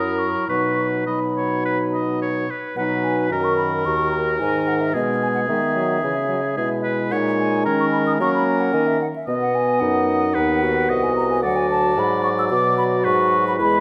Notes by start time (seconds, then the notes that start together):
Already playing: F#2 F#3 E4 A#4 D#6
0.19 C#6
0.49 B2 F#3 D#4 B4 C#6
1.06 F#3 D#4 D#5 B5
1.36 C#5
1.65 B4
1.94 D#5
2.22 C#5
2.51 B4
2.76 B2 F#3 D#4 B4 F#5
3.03 G#5
3.31 F#2 D#3 F#4 A#4 A#5
3.44 C#6
3.57 B5
3.86 D#2 F#4 C#6
4.11 A#5
4.39 G#2 D#3 D#4 G#5
4.68 F#5
4.81 E5
4.94 B2 G#3 B3 G#4 D#5
5.22 G#5
5.34 F#5
5.47 D#3 G#3 B3 E5
5.75 F#3
6.02 C#3 E3 C#4
6.28 F#3
6.56 B2 G#3 E4 G#4
6.84 B4
7.11 A#2 D#4 C#5 F#5
7.39 G#5
7.64 D#3 C#4 A#4 A#5
7.80 C#6
7.92 B5
8.07 D#6
8.20 F#3 A#3 C#4 A#4 C#6
8.35 B5
8.47 A#5
8.61 F#5
8.74 D#3 G#5
8.87 E5
9.01 F#5
9.16 E5
9.27 B2 B3 D#5
9.42 F#5
9.55 G#5
9.80 F#2 D#4 F#5
10.34 D#2 B3 D#4 B4
10.62 F#4
10.89 C2 D#5
11.03 G#5
11.16 A#5
11.30 G#5
11.43 D2 F#3 D5 F#5
11.56 G#5
11.71 A5
11.97 G#2 F#3 B5
12.23 C#6
12.39 E6
12.50 B2 F#4 D6
12.78 B5
13.05 G#2 B4 C#6
13.48 B5
13.59 E2 G#3 E4 B4 B5